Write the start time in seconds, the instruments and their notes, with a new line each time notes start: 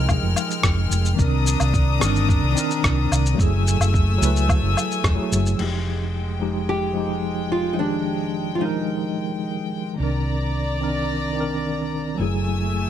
Already playing: fingered electric bass C2, tine electric piano F3 G#3 D#4 G4 A#4 G5, string section G#3 G5 F6
0.09 kick, low woodblock, shaker
0.23 fingered electric bass F1
0.36 low woodblock, shaker
0.51 shaker
0.63 fingered electric bass F1, kick, cross-stick, shaker
0.91 fingered electric bass F1, shaker
1.05 shaker
1.15 tine electric piano D#3 C4, string section D4 D#6, kick
1.19 fingered electric bass C2, tine electric piano D4 A#4, string section A#5, shaker
1.47 shaker
1.60 fingered electric bass C2, low woodblock, shaker
1.74 kick, shaker
1.99 fingered electric bass G1, tine electric piano D#3 C4 D4 A#4, cross-stick, shaker
2.16 shaker
2.29 kick, shaker
2.43 fingered electric bass C2
2.52 tine electric piano D#3 C4
2.57 tine electric piano D4 A#4, shaker
2.71 shaker
2.84 fingered electric bass C2, kick, cross-stick, shaker
3.12 fingered electric bass C2, low woodblock, shaker
3.26 shaker
3.35 tine electric piano F#3 A3, string section A3
3.39 fingered electric bass F#1, tine electric piano E4 G#4, string section G#5 E6, kick, shaker
3.67 shaker
3.80 fingered electric bass F#1, low woodblock, shaker
3.94 kick, shaker
4.18 fingered electric bass C#2, tine electric piano F#3 A3
4.22 tine electric piano E4 B4, shaker
4.36 shaker
4.49 kick, low woodblock, shaker
4.62 fingered electric bass F#1
4.77 low woodblock, shaker
4.91 shaker
5.04 fingered electric bass E1, kick, cross-stick, shaker
5.15 tine electric piano F#3 A3 E4 G#4
5.32 fingered electric bass F#1, shaker
5.46 shaker
5.55 tine electric piano F3 G#3
5.59 fingered electric bass F1, string section G#3 G5, tine electric piano D#4 G4, crash
6.39 tine electric piano F3 G#3 D#4 G4
6.69 nylon-string guitar G4
6.93 tine electric piano F3 G#3
6.97 tine electric piano D#4 G4
7.52 nylon-string guitar F4
7.73 tine electric piano F3 G#3, nylon-string guitar D#4
7.79 tine electric piano D#3 G4, nylon-string guitar D4
8.55 tine electric piano F3, nylon-string guitar F4
8.60 tine electric piano G#3 D#4, nylon-string guitar D#4
8.65 tine electric piano A#4
9.96 fingered electric bass C2, tine electric piano D#3 C4, string section D5 A#5
10.01 tine electric piano D4 A#4
10.80 tine electric piano D#3 C4 D4 A#4
11.33 tine electric piano D#3 C4
11.37 tine electric piano D4 A#4
12.15 tine electric piano F#3 A3
12.19 fingered electric bass F#1, string section A3 G#5 E6, tine electric piano E4 G#4